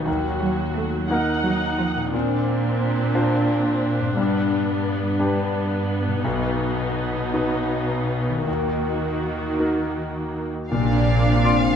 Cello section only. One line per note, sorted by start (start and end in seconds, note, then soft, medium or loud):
0.07 0.39 D#3 medium
0.42 0.74 F#3 medium
0.77 1.09 A3 medium
1.11 1.43 A#3 medium
1.45 1.77 F#3 medium
1.79 2.11 F3 medium
2.13 4.13 A#2 medium
4.17 6.20 G2 medium
6.25 8.43 B2 soft
8.47 10.52 D#3 soft
10.73 11.76 A#2 medium